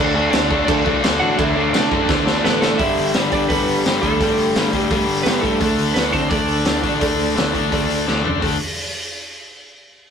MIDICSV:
0, 0, Header, 1, 6, 480
1, 0, Start_track
1, 0, Key_signature, 2, "major"
1, 0, Tempo, 351700
1, 1893, Time_signature, 4, 2, 24, 8
1, 13790, End_track
2, 0, Start_track
2, 0, Title_t, "Lead electric guitar"
2, 0, Program_c, 0, 29
2, 0, Note_on_c, 0, 62, 77
2, 0, Note_on_c, 0, 74, 104
2, 405, Note_off_c, 0, 74, 0
2, 421, Note_on_c, 0, 74, 96
2, 423, Note_off_c, 0, 62, 0
2, 455, Note_on_c, 0, 62, 78
2, 866, Note_off_c, 0, 74, 0
2, 882, Note_on_c, 0, 74, 78
2, 900, Note_off_c, 0, 62, 0
2, 925, Note_on_c, 0, 62, 69
2, 1352, Note_off_c, 0, 74, 0
2, 1375, Note_off_c, 0, 62, 0
2, 1632, Note_on_c, 0, 78, 90
2, 1659, Note_on_c, 0, 66, 79
2, 1879, Note_off_c, 0, 66, 0
2, 1879, Note_off_c, 0, 78, 0
2, 1879, Note_on_c, 0, 76, 100
2, 1901, Note_on_c, 0, 64, 76
2, 2120, Note_off_c, 0, 64, 0
2, 2121, Note_off_c, 0, 76, 0
2, 2121, Note_on_c, 0, 74, 87
2, 2145, Note_on_c, 0, 62, 67
2, 3332, Note_on_c, 0, 59, 85
2, 3334, Note_on_c, 0, 71, 91
2, 3523, Note_off_c, 0, 62, 0
2, 3555, Note_off_c, 0, 59, 0
2, 3561, Note_on_c, 0, 69, 100
2, 3566, Note_off_c, 0, 74, 0
2, 3577, Note_off_c, 0, 71, 0
2, 3581, Note_on_c, 0, 57, 79
2, 3792, Note_on_c, 0, 76, 107
2, 3800, Note_off_c, 0, 57, 0
2, 3813, Note_off_c, 0, 69, 0
2, 3819, Note_on_c, 0, 64, 85
2, 4248, Note_off_c, 0, 76, 0
2, 4262, Note_off_c, 0, 64, 0
2, 4539, Note_on_c, 0, 74, 91
2, 4568, Note_on_c, 0, 62, 73
2, 4751, Note_off_c, 0, 74, 0
2, 4756, Note_on_c, 0, 71, 86
2, 4774, Note_off_c, 0, 62, 0
2, 4788, Note_on_c, 0, 59, 64
2, 5210, Note_off_c, 0, 71, 0
2, 5226, Note_off_c, 0, 59, 0
2, 5480, Note_on_c, 0, 69, 93
2, 5513, Note_on_c, 0, 57, 75
2, 6449, Note_off_c, 0, 69, 0
2, 6449, Note_on_c, 0, 67, 93
2, 6872, Note_off_c, 0, 67, 0
2, 6888, Note_off_c, 0, 57, 0
2, 7143, Note_on_c, 0, 71, 87
2, 7188, Note_on_c, 0, 59, 73
2, 7381, Note_on_c, 0, 69, 90
2, 7403, Note_off_c, 0, 59, 0
2, 7405, Note_off_c, 0, 71, 0
2, 7420, Note_on_c, 0, 57, 75
2, 8086, Note_off_c, 0, 57, 0
2, 8107, Note_on_c, 0, 71, 90
2, 8139, Note_off_c, 0, 69, 0
2, 8156, Note_on_c, 0, 59, 68
2, 8358, Note_off_c, 0, 59, 0
2, 8358, Note_on_c, 0, 72, 86
2, 8367, Note_off_c, 0, 71, 0
2, 8398, Note_on_c, 0, 60, 65
2, 8586, Note_off_c, 0, 72, 0
2, 8586, Note_on_c, 0, 74, 73
2, 8609, Note_off_c, 0, 60, 0
2, 8636, Note_on_c, 0, 62, 58
2, 10969, Note_off_c, 0, 62, 0
2, 10999, Note_off_c, 0, 74, 0
2, 13790, End_track
3, 0, Start_track
3, 0, Title_t, "Distorted electric guitar"
3, 0, Program_c, 1, 30
3, 0, Note_on_c, 1, 66, 106
3, 660, Note_off_c, 1, 66, 0
3, 666, Note_on_c, 1, 66, 85
3, 1864, Note_off_c, 1, 66, 0
3, 1922, Note_on_c, 1, 66, 109
3, 2586, Note_off_c, 1, 66, 0
3, 2602, Note_on_c, 1, 66, 83
3, 3792, Note_off_c, 1, 66, 0
3, 13790, End_track
4, 0, Start_track
4, 0, Title_t, "Overdriven electric guitar"
4, 0, Program_c, 2, 29
4, 0, Note_on_c, 2, 50, 97
4, 0, Note_on_c, 2, 57, 101
4, 0, Note_on_c, 2, 62, 110
4, 196, Note_off_c, 2, 50, 0
4, 202, Note_on_c, 2, 50, 79
4, 210, Note_off_c, 2, 57, 0
4, 210, Note_off_c, 2, 62, 0
4, 215, Note_on_c, 2, 62, 90
4, 216, Note_on_c, 2, 57, 96
4, 418, Note_off_c, 2, 50, 0
4, 423, Note_on_c, 2, 50, 92
4, 435, Note_off_c, 2, 57, 0
4, 435, Note_off_c, 2, 62, 0
4, 441, Note_on_c, 2, 57, 88
4, 441, Note_on_c, 2, 62, 98
4, 684, Note_off_c, 2, 50, 0
4, 686, Note_off_c, 2, 57, 0
4, 689, Note_off_c, 2, 62, 0
4, 689, Note_on_c, 2, 50, 91
4, 691, Note_on_c, 2, 57, 98
4, 695, Note_on_c, 2, 62, 102
4, 903, Note_off_c, 2, 50, 0
4, 906, Note_off_c, 2, 57, 0
4, 920, Note_on_c, 2, 50, 110
4, 923, Note_on_c, 2, 57, 118
4, 925, Note_off_c, 2, 62, 0
4, 930, Note_on_c, 2, 62, 116
4, 1135, Note_off_c, 2, 50, 0
4, 1142, Note_off_c, 2, 57, 0
4, 1151, Note_on_c, 2, 50, 90
4, 1154, Note_off_c, 2, 62, 0
4, 1158, Note_on_c, 2, 57, 96
4, 1160, Note_on_c, 2, 62, 105
4, 1382, Note_off_c, 2, 50, 0
4, 1394, Note_off_c, 2, 57, 0
4, 1398, Note_on_c, 2, 50, 80
4, 1400, Note_off_c, 2, 62, 0
4, 1406, Note_on_c, 2, 62, 90
4, 1410, Note_on_c, 2, 57, 98
4, 1617, Note_off_c, 2, 50, 0
4, 1621, Note_off_c, 2, 57, 0
4, 1634, Note_on_c, 2, 50, 98
4, 1638, Note_on_c, 2, 57, 89
4, 1641, Note_off_c, 2, 62, 0
4, 1646, Note_on_c, 2, 62, 116
4, 1857, Note_off_c, 2, 50, 0
4, 1862, Note_off_c, 2, 57, 0
4, 1872, Note_off_c, 2, 62, 0
4, 1874, Note_on_c, 2, 50, 98
4, 1878, Note_on_c, 2, 57, 108
4, 1888, Note_on_c, 2, 62, 114
4, 2112, Note_off_c, 2, 50, 0
4, 2121, Note_off_c, 2, 57, 0
4, 2126, Note_off_c, 2, 62, 0
4, 2129, Note_on_c, 2, 50, 90
4, 2138, Note_on_c, 2, 57, 92
4, 2142, Note_on_c, 2, 62, 82
4, 2345, Note_off_c, 2, 50, 0
4, 2352, Note_off_c, 2, 57, 0
4, 2352, Note_off_c, 2, 62, 0
4, 2361, Note_on_c, 2, 50, 86
4, 2368, Note_on_c, 2, 57, 83
4, 2368, Note_on_c, 2, 62, 97
4, 2595, Note_off_c, 2, 50, 0
4, 2604, Note_off_c, 2, 57, 0
4, 2607, Note_off_c, 2, 62, 0
4, 2612, Note_on_c, 2, 50, 93
4, 2620, Note_on_c, 2, 57, 94
4, 2623, Note_on_c, 2, 62, 110
4, 2830, Note_off_c, 2, 50, 0
4, 2833, Note_off_c, 2, 57, 0
4, 2844, Note_off_c, 2, 62, 0
4, 2847, Note_on_c, 2, 50, 89
4, 2849, Note_on_c, 2, 57, 110
4, 2860, Note_on_c, 2, 62, 113
4, 3062, Note_off_c, 2, 50, 0
4, 3074, Note_off_c, 2, 62, 0
4, 3075, Note_off_c, 2, 57, 0
4, 3078, Note_on_c, 2, 50, 84
4, 3091, Note_on_c, 2, 62, 102
4, 3092, Note_on_c, 2, 57, 96
4, 3315, Note_off_c, 2, 50, 0
4, 3320, Note_off_c, 2, 57, 0
4, 3324, Note_off_c, 2, 62, 0
4, 3331, Note_on_c, 2, 50, 78
4, 3337, Note_on_c, 2, 57, 86
4, 3340, Note_on_c, 2, 62, 98
4, 3541, Note_off_c, 2, 50, 0
4, 3548, Note_off_c, 2, 57, 0
4, 3554, Note_off_c, 2, 62, 0
4, 3557, Note_on_c, 2, 50, 92
4, 3565, Note_on_c, 2, 57, 88
4, 3571, Note_on_c, 2, 62, 92
4, 3790, Note_off_c, 2, 50, 0
4, 3794, Note_off_c, 2, 57, 0
4, 3797, Note_off_c, 2, 62, 0
4, 3803, Note_on_c, 2, 43, 94
4, 3805, Note_on_c, 2, 50, 102
4, 3816, Note_on_c, 2, 55, 91
4, 4278, Note_off_c, 2, 50, 0
4, 4280, Note_off_c, 2, 43, 0
4, 4285, Note_on_c, 2, 43, 81
4, 4288, Note_off_c, 2, 55, 0
4, 4294, Note_on_c, 2, 50, 84
4, 4294, Note_on_c, 2, 55, 86
4, 4519, Note_off_c, 2, 50, 0
4, 4521, Note_off_c, 2, 43, 0
4, 4527, Note_on_c, 2, 43, 85
4, 4536, Note_on_c, 2, 50, 90
4, 4538, Note_off_c, 2, 55, 0
4, 4544, Note_on_c, 2, 55, 82
4, 4762, Note_off_c, 2, 43, 0
4, 4767, Note_off_c, 2, 50, 0
4, 4778, Note_on_c, 2, 43, 97
4, 4780, Note_off_c, 2, 55, 0
4, 4783, Note_on_c, 2, 50, 92
4, 4796, Note_on_c, 2, 55, 99
4, 5241, Note_off_c, 2, 43, 0
4, 5257, Note_off_c, 2, 50, 0
4, 5257, Note_on_c, 2, 43, 78
4, 5265, Note_off_c, 2, 55, 0
4, 5274, Note_on_c, 2, 50, 86
4, 5282, Note_on_c, 2, 55, 94
4, 5480, Note_off_c, 2, 43, 0
4, 5491, Note_off_c, 2, 50, 0
4, 5492, Note_off_c, 2, 55, 0
4, 5496, Note_on_c, 2, 43, 82
4, 5507, Note_on_c, 2, 50, 93
4, 5508, Note_on_c, 2, 55, 92
4, 5717, Note_off_c, 2, 43, 0
4, 5725, Note_off_c, 2, 50, 0
4, 5733, Note_on_c, 2, 43, 96
4, 5740, Note_off_c, 2, 55, 0
4, 5742, Note_on_c, 2, 50, 96
4, 5756, Note_on_c, 2, 55, 110
4, 6199, Note_off_c, 2, 43, 0
4, 6212, Note_off_c, 2, 50, 0
4, 6215, Note_on_c, 2, 43, 75
4, 6219, Note_off_c, 2, 55, 0
4, 6229, Note_on_c, 2, 50, 81
4, 6236, Note_on_c, 2, 55, 86
4, 6441, Note_off_c, 2, 43, 0
4, 6446, Note_off_c, 2, 50, 0
4, 6456, Note_off_c, 2, 55, 0
4, 6457, Note_on_c, 2, 43, 83
4, 6462, Note_on_c, 2, 50, 83
4, 6472, Note_on_c, 2, 55, 89
4, 6690, Note_off_c, 2, 43, 0
4, 6697, Note_off_c, 2, 50, 0
4, 6706, Note_off_c, 2, 55, 0
4, 6707, Note_on_c, 2, 43, 96
4, 6714, Note_on_c, 2, 50, 96
4, 6723, Note_on_c, 2, 55, 100
4, 7168, Note_off_c, 2, 43, 0
4, 7174, Note_off_c, 2, 50, 0
4, 7179, Note_off_c, 2, 55, 0
4, 7184, Note_on_c, 2, 43, 75
4, 7191, Note_on_c, 2, 50, 84
4, 7195, Note_on_c, 2, 55, 83
4, 7388, Note_off_c, 2, 43, 0
4, 7401, Note_off_c, 2, 50, 0
4, 7404, Note_on_c, 2, 43, 86
4, 7405, Note_off_c, 2, 55, 0
4, 7417, Note_on_c, 2, 50, 88
4, 7421, Note_on_c, 2, 55, 100
4, 7620, Note_off_c, 2, 50, 0
4, 7633, Note_off_c, 2, 43, 0
4, 7636, Note_on_c, 2, 50, 93
4, 7639, Note_off_c, 2, 55, 0
4, 7644, Note_on_c, 2, 57, 93
4, 7656, Note_on_c, 2, 62, 102
4, 8131, Note_off_c, 2, 50, 0
4, 8131, Note_off_c, 2, 57, 0
4, 8136, Note_on_c, 2, 50, 78
4, 8137, Note_off_c, 2, 62, 0
4, 8137, Note_on_c, 2, 57, 86
4, 8142, Note_on_c, 2, 62, 89
4, 8354, Note_off_c, 2, 50, 0
4, 8360, Note_on_c, 2, 50, 75
4, 8372, Note_off_c, 2, 57, 0
4, 8372, Note_off_c, 2, 62, 0
4, 8377, Note_on_c, 2, 57, 78
4, 8378, Note_on_c, 2, 62, 89
4, 8605, Note_off_c, 2, 50, 0
4, 8605, Note_off_c, 2, 57, 0
4, 8610, Note_on_c, 2, 57, 90
4, 8611, Note_off_c, 2, 62, 0
4, 8611, Note_on_c, 2, 50, 93
4, 8616, Note_on_c, 2, 62, 95
4, 9073, Note_off_c, 2, 50, 0
4, 9078, Note_on_c, 2, 50, 76
4, 9083, Note_off_c, 2, 57, 0
4, 9088, Note_on_c, 2, 57, 78
4, 9092, Note_off_c, 2, 62, 0
4, 9097, Note_on_c, 2, 62, 78
4, 9307, Note_off_c, 2, 50, 0
4, 9313, Note_on_c, 2, 50, 86
4, 9317, Note_off_c, 2, 57, 0
4, 9322, Note_on_c, 2, 57, 85
4, 9323, Note_off_c, 2, 62, 0
4, 9329, Note_on_c, 2, 62, 84
4, 9538, Note_off_c, 2, 50, 0
4, 9541, Note_off_c, 2, 57, 0
4, 9546, Note_off_c, 2, 62, 0
4, 9555, Note_on_c, 2, 50, 90
4, 9557, Note_on_c, 2, 57, 91
4, 9562, Note_on_c, 2, 62, 94
4, 10016, Note_off_c, 2, 50, 0
4, 10033, Note_off_c, 2, 57, 0
4, 10033, Note_on_c, 2, 50, 80
4, 10038, Note_off_c, 2, 62, 0
4, 10049, Note_on_c, 2, 57, 77
4, 10055, Note_on_c, 2, 62, 87
4, 10280, Note_off_c, 2, 50, 0
4, 10292, Note_off_c, 2, 57, 0
4, 10296, Note_on_c, 2, 50, 75
4, 10301, Note_off_c, 2, 62, 0
4, 10309, Note_on_c, 2, 57, 84
4, 10317, Note_on_c, 2, 62, 94
4, 10514, Note_off_c, 2, 50, 0
4, 10528, Note_off_c, 2, 57, 0
4, 10531, Note_on_c, 2, 50, 85
4, 10534, Note_off_c, 2, 62, 0
4, 10545, Note_on_c, 2, 57, 98
4, 10550, Note_on_c, 2, 62, 93
4, 10997, Note_off_c, 2, 50, 0
4, 10999, Note_off_c, 2, 57, 0
4, 11013, Note_off_c, 2, 62, 0
4, 11013, Note_on_c, 2, 50, 72
4, 11016, Note_on_c, 2, 57, 79
4, 11029, Note_on_c, 2, 62, 78
4, 11218, Note_off_c, 2, 50, 0
4, 11228, Note_off_c, 2, 57, 0
4, 11234, Note_on_c, 2, 50, 82
4, 11237, Note_off_c, 2, 62, 0
4, 11245, Note_on_c, 2, 57, 87
4, 11253, Note_on_c, 2, 62, 89
4, 11447, Note_off_c, 2, 50, 0
4, 11459, Note_off_c, 2, 57, 0
4, 11463, Note_on_c, 2, 50, 85
4, 11475, Note_off_c, 2, 62, 0
4, 11475, Note_on_c, 2, 57, 90
4, 11491, Note_on_c, 2, 62, 92
4, 11669, Note_off_c, 2, 50, 0
4, 11675, Note_off_c, 2, 57, 0
4, 11683, Note_off_c, 2, 62, 0
4, 13790, End_track
5, 0, Start_track
5, 0, Title_t, "Picked electric bass"
5, 0, Program_c, 3, 34
5, 0, Note_on_c, 3, 38, 103
5, 371, Note_off_c, 3, 38, 0
5, 440, Note_on_c, 3, 38, 96
5, 844, Note_off_c, 3, 38, 0
5, 929, Note_on_c, 3, 38, 86
5, 1130, Note_off_c, 3, 38, 0
5, 1170, Note_on_c, 3, 36, 87
5, 1371, Note_off_c, 3, 36, 0
5, 1406, Note_on_c, 3, 38, 94
5, 1608, Note_off_c, 3, 38, 0
5, 1651, Note_on_c, 3, 33, 93
5, 1851, Note_off_c, 3, 33, 0
5, 1889, Note_on_c, 3, 38, 103
5, 2090, Note_off_c, 3, 38, 0
5, 2123, Note_on_c, 3, 38, 94
5, 2326, Note_off_c, 3, 38, 0
5, 2366, Note_on_c, 3, 48, 100
5, 2568, Note_off_c, 3, 48, 0
5, 2612, Note_on_c, 3, 42, 94
5, 2811, Note_off_c, 3, 42, 0
5, 2856, Note_on_c, 3, 38, 94
5, 3253, Note_off_c, 3, 38, 0
5, 3334, Note_on_c, 3, 33, 91
5, 3732, Note_off_c, 3, 33, 0
5, 3815, Note_on_c, 3, 31, 84
5, 4046, Note_off_c, 3, 31, 0
5, 4058, Note_on_c, 3, 31, 85
5, 4285, Note_off_c, 3, 31, 0
5, 4293, Note_on_c, 3, 31, 85
5, 4525, Note_off_c, 3, 31, 0
5, 4533, Note_on_c, 3, 31, 82
5, 4765, Note_off_c, 3, 31, 0
5, 4774, Note_on_c, 3, 31, 78
5, 5005, Note_off_c, 3, 31, 0
5, 5020, Note_on_c, 3, 31, 84
5, 5248, Note_off_c, 3, 31, 0
5, 5256, Note_on_c, 3, 31, 82
5, 5486, Note_off_c, 3, 31, 0
5, 5500, Note_on_c, 3, 38, 90
5, 5729, Note_off_c, 3, 38, 0
5, 5743, Note_on_c, 3, 31, 85
5, 5955, Note_off_c, 3, 31, 0
5, 5963, Note_on_c, 3, 31, 83
5, 6200, Note_off_c, 3, 31, 0
5, 6211, Note_on_c, 3, 31, 90
5, 6444, Note_off_c, 3, 31, 0
5, 6457, Note_on_c, 3, 31, 86
5, 6687, Note_off_c, 3, 31, 0
5, 6697, Note_on_c, 3, 31, 90
5, 6914, Note_off_c, 3, 31, 0
5, 6922, Note_on_c, 3, 31, 84
5, 7159, Note_off_c, 3, 31, 0
5, 7167, Note_on_c, 3, 31, 82
5, 7402, Note_off_c, 3, 31, 0
5, 7417, Note_on_c, 3, 31, 86
5, 7647, Note_off_c, 3, 31, 0
5, 7654, Note_on_c, 3, 38, 84
5, 7873, Note_off_c, 3, 38, 0
5, 7881, Note_on_c, 3, 38, 92
5, 8110, Note_off_c, 3, 38, 0
5, 8119, Note_on_c, 3, 38, 85
5, 8357, Note_off_c, 3, 38, 0
5, 8372, Note_on_c, 3, 38, 83
5, 8600, Note_off_c, 3, 38, 0
5, 8608, Note_on_c, 3, 38, 81
5, 8842, Note_off_c, 3, 38, 0
5, 8850, Note_on_c, 3, 38, 84
5, 9083, Note_off_c, 3, 38, 0
5, 9089, Note_on_c, 3, 38, 85
5, 9323, Note_off_c, 3, 38, 0
5, 9330, Note_on_c, 3, 33, 79
5, 9563, Note_off_c, 3, 33, 0
5, 9572, Note_on_c, 3, 38, 83
5, 9805, Note_off_c, 3, 38, 0
5, 9815, Note_on_c, 3, 38, 82
5, 10046, Note_off_c, 3, 38, 0
5, 10062, Note_on_c, 3, 38, 84
5, 10286, Note_off_c, 3, 38, 0
5, 10294, Note_on_c, 3, 38, 80
5, 10525, Note_off_c, 3, 38, 0
5, 10536, Note_on_c, 3, 38, 85
5, 10766, Note_off_c, 3, 38, 0
5, 10784, Note_on_c, 3, 38, 78
5, 11010, Note_off_c, 3, 38, 0
5, 11026, Note_on_c, 3, 38, 79
5, 11244, Note_off_c, 3, 38, 0
5, 11252, Note_on_c, 3, 38, 78
5, 11485, Note_off_c, 3, 38, 0
5, 11500, Note_on_c, 3, 38, 79
5, 11719, Note_off_c, 3, 38, 0
5, 13790, End_track
6, 0, Start_track
6, 0, Title_t, "Drums"
6, 447, Note_on_c, 9, 49, 64
6, 459, Note_on_c, 9, 38, 108
6, 584, Note_off_c, 9, 49, 0
6, 596, Note_off_c, 9, 38, 0
6, 691, Note_on_c, 9, 36, 91
6, 827, Note_off_c, 9, 36, 0
6, 932, Note_on_c, 9, 36, 127
6, 936, Note_on_c, 9, 49, 71
6, 1069, Note_off_c, 9, 36, 0
6, 1073, Note_off_c, 9, 49, 0
6, 1172, Note_on_c, 9, 36, 100
6, 1309, Note_off_c, 9, 36, 0
6, 1415, Note_on_c, 9, 49, 67
6, 1427, Note_on_c, 9, 38, 120
6, 1552, Note_off_c, 9, 49, 0
6, 1564, Note_off_c, 9, 38, 0
6, 1893, Note_on_c, 9, 36, 117
6, 1895, Note_on_c, 9, 49, 63
6, 2029, Note_off_c, 9, 36, 0
6, 2031, Note_off_c, 9, 49, 0
6, 2372, Note_on_c, 9, 49, 62
6, 2385, Note_on_c, 9, 38, 107
6, 2509, Note_off_c, 9, 49, 0
6, 2521, Note_off_c, 9, 38, 0
6, 2614, Note_on_c, 9, 36, 90
6, 2751, Note_off_c, 9, 36, 0
6, 2851, Note_on_c, 9, 36, 123
6, 2855, Note_on_c, 9, 38, 76
6, 2988, Note_off_c, 9, 36, 0
6, 2992, Note_off_c, 9, 38, 0
6, 3098, Note_on_c, 9, 38, 77
6, 3234, Note_off_c, 9, 38, 0
6, 3345, Note_on_c, 9, 38, 102
6, 3481, Note_off_c, 9, 38, 0
6, 3577, Note_on_c, 9, 38, 97
6, 3713, Note_off_c, 9, 38, 0
6, 3809, Note_on_c, 9, 46, 77
6, 3815, Note_on_c, 9, 36, 110
6, 3945, Note_off_c, 9, 46, 0
6, 3951, Note_off_c, 9, 36, 0
6, 4059, Note_on_c, 9, 46, 55
6, 4196, Note_off_c, 9, 46, 0
6, 4282, Note_on_c, 9, 46, 67
6, 4294, Note_on_c, 9, 38, 100
6, 4418, Note_off_c, 9, 46, 0
6, 4431, Note_off_c, 9, 38, 0
6, 4526, Note_on_c, 9, 46, 55
6, 4535, Note_on_c, 9, 36, 87
6, 4663, Note_off_c, 9, 46, 0
6, 4671, Note_off_c, 9, 36, 0
6, 4776, Note_on_c, 9, 46, 77
6, 4777, Note_on_c, 9, 36, 108
6, 4912, Note_off_c, 9, 46, 0
6, 4913, Note_off_c, 9, 36, 0
6, 5018, Note_on_c, 9, 46, 54
6, 5154, Note_off_c, 9, 46, 0
6, 5258, Note_on_c, 9, 46, 68
6, 5270, Note_on_c, 9, 38, 107
6, 5395, Note_off_c, 9, 46, 0
6, 5407, Note_off_c, 9, 38, 0
6, 5494, Note_on_c, 9, 46, 49
6, 5498, Note_on_c, 9, 36, 82
6, 5631, Note_off_c, 9, 46, 0
6, 5634, Note_off_c, 9, 36, 0
6, 5740, Note_on_c, 9, 36, 104
6, 5740, Note_on_c, 9, 46, 67
6, 5876, Note_off_c, 9, 46, 0
6, 5877, Note_off_c, 9, 36, 0
6, 5975, Note_on_c, 9, 46, 55
6, 6111, Note_off_c, 9, 46, 0
6, 6217, Note_on_c, 9, 46, 69
6, 6229, Note_on_c, 9, 38, 90
6, 6353, Note_off_c, 9, 46, 0
6, 6365, Note_off_c, 9, 38, 0
6, 6453, Note_on_c, 9, 46, 59
6, 6457, Note_on_c, 9, 36, 79
6, 6590, Note_off_c, 9, 46, 0
6, 6594, Note_off_c, 9, 36, 0
6, 6698, Note_on_c, 9, 46, 80
6, 6699, Note_on_c, 9, 36, 114
6, 6835, Note_off_c, 9, 36, 0
6, 6835, Note_off_c, 9, 46, 0
6, 6939, Note_on_c, 9, 46, 59
6, 7076, Note_off_c, 9, 46, 0
6, 7174, Note_on_c, 9, 46, 75
6, 7187, Note_on_c, 9, 38, 103
6, 7311, Note_off_c, 9, 46, 0
6, 7323, Note_off_c, 9, 38, 0
6, 7417, Note_on_c, 9, 36, 83
6, 7425, Note_on_c, 9, 46, 52
6, 7553, Note_off_c, 9, 36, 0
6, 7562, Note_off_c, 9, 46, 0
6, 7648, Note_on_c, 9, 46, 72
6, 7654, Note_on_c, 9, 36, 103
6, 7785, Note_off_c, 9, 46, 0
6, 7791, Note_off_c, 9, 36, 0
6, 7897, Note_on_c, 9, 46, 57
6, 8033, Note_off_c, 9, 46, 0
6, 8133, Note_on_c, 9, 46, 70
6, 8146, Note_on_c, 9, 38, 105
6, 8270, Note_off_c, 9, 46, 0
6, 8282, Note_off_c, 9, 38, 0
6, 8369, Note_on_c, 9, 46, 53
6, 8371, Note_on_c, 9, 36, 85
6, 8506, Note_off_c, 9, 46, 0
6, 8508, Note_off_c, 9, 36, 0
6, 8601, Note_on_c, 9, 46, 74
6, 8609, Note_on_c, 9, 36, 114
6, 8737, Note_off_c, 9, 46, 0
6, 8745, Note_off_c, 9, 36, 0
6, 8842, Note_on_c, 9, 46, 50
6, 8978, Note_off_c, 9, 46, 0
6, 9078, Note_on_c, 9, 46, 71
6, 9090, Note_on_c, 9, 38, 101
6, 9214, Note_off_c, 9, 46, 0
6, 9227, Note_off_c, 9, 38, 0
6, 9323, Note_on_c, 9, 46, 50
6, 9330, Note_on_c, 9, 36, 74
6, 9460, Note_off_c, 9, 46, 0
6, 9466, Note_off_c, 9, 36, 0
6, 9568, Note_on_c, 9, 46, 67
6, 9572, Note_on_c, 9, 36, 97
6, 9704, Note_off_c, 9, 46, 0
6, 9709, Note_off_c, 9, 36, 0
6, 9808, Note_on_c, 9, 46, 47
6, 9944, Note_off_c, 9, 46, 0
6, 10066, Note_on_c, 9, 46, 60
6, 10078, Note_on_c, 9, 38, 102
6, 10203, Note_off_c, 9, 46, 0
6, 10215, Note_off_c, 9, 38, 0
6, 10296, Note_on_c, 9, 36, 74
6, 10301, Note_on_c, 9, 46, 51
6, 10433, Note_off_c, 9, 36, 0
6, 10438, Note_off_c, 9, 46, 0
6, 10539, Note_on_c, 9, 36, 106
6, 10540, Note_on_c, 9, 46, 77
6, 10675, Note_off_c, 9, 36, 0
6, 10677, Note_off_c, 9, 46, 0
6, 10781, Note_on_c, 9, 46, 53
6, 10918, Note_off_c, 9, 46, 0
6, 11025, Note_on_c, 9, 38, 51
6, 11161, Note_off_c, 9, 38, 0
6, 11264, Note_on_c, 9, 43, 74
6, 11400, Note_off_c, 9, 43, 0
6, 11497, Note_on_c, 9, 36, 93
6, 11505, Note_on_c, 9, 46, 73
6, 11633, Note_off_c, 9, 36, 0
6, 11642, Note_off_c, 9, 46, 0
6, 13790, End_track
0, 0, End_of_file